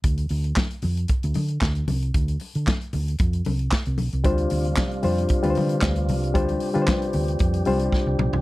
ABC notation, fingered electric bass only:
X:1
M:4/4
L:1/16
Q:1/4=114
K:Dm
V:1 name="Fingered electric bass" clef=bass
D,,2 D,,2 z2 F,,2 z D,, D,2 D,,2 C,,2 | D,,2 z D, z2 D,,2 F,,2 C,,2 z C,, =B,,, C,, | D,,2 D,,2 z2 F,,2 z D,, D,2 D,,2 C,,2 | D,,2 z D, z2 D,,2 F,,2 C,,2 z C,, =B,,, C,, |]